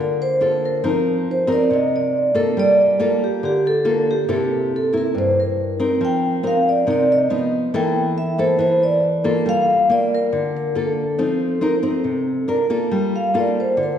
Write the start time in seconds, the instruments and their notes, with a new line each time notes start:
Already playing: nylon-string guitar D3 A#3 F4 A4
0.01 vibraphone A#4
0.22 vibraphone C5
0.41 nylon-string guitar A#3 F4 A4
0.66 vibraphone A#4
0.84 nylon-string guitar F3 C4 D#4 A#4
1.31 vibraphone C5
1.47 nylon-string guitar C4 D#4 A#4
1.52 vibraphone D5
1.70 nylon-string guitar C3, vibraphone D#5
1.96 vibraphone D5
2.34 nylon-string guitar A#3 F4 A4
2.57 nylon-string guitar G3, vibraphone D5
2.99 nylon-string guitar A#3 F4 A4, vibraphone A#4
3.24 vibraphone G4
3.43 nylon-string guitar D3, vibraphone G4
3.67 vibraphone A4
3.85 nylon-string guitar A#3 F4 A4
4.11 vibraphone G4
4.28 nylon-string guitar C3 A#3 E4 A4
4.76 vibraphone A4
4.93 nylon-string guitar A#3 E4
4.98 vibraphone A#4
5.15 nylon-string guitar G2, vibraphone C5
5.40 vibraphone A#4
5.80 nylon-string guitar C4 D#4 A#4
6.01 nylon-string guitar F3
6.05 vibraphone G5
6.43 nylon-string guitar C4 D#4 A#4, vibraphone F5
6.69 vibraphone D5
6.87 nylon-string guitar C3 C4 D#4 A#4, vibraphone D5
7.12 vibraphone D#5
7.30 nylon-string guitar F3 B3 D#4
7.74 nylon-string guitar E3 A#3 E4 A4, vibraphone G5
8.18 vibraphone E5
8.38 nylon-string guitar A#3 E4 A4, vibraphone C5
8.59 nylon-string guitar E3, vibraphone C5
8.83 vibraphone D5
9.24 nylon-string guitar A#3 F4 A4
9.46 nylon-string guitar G3, vibraphone F5
9.89 nylon-string guitar A#3 F4, vibraphone D5
10.15 vibraphone A#4
10.32 nylon-string guitar D3
10.57 vibraphone A#4
10.75 nylon-string guitar A#3 F4 A4, vibraphone A4
11.18 nylon-string guitar F3 C4 D#4
11.61 nylon-string guitar C4 D#4 A#4
11.83 nylon-string guitar C4 D#4
12.04 nylon-string guitar C3
12.48 nylon-string guitar D4 F4 A#4
12.70 nylon-string guitar A#3 F4 A4
12.91 nylon-string guitar G3
13.16 vibraphone F5
13.34 nylon-string guitar A#3 F4 A4
13.38 vibraphone D5
13.60 vibraphone C5
13.77 nylon-string guitar D3
13.83 vibraphone A#4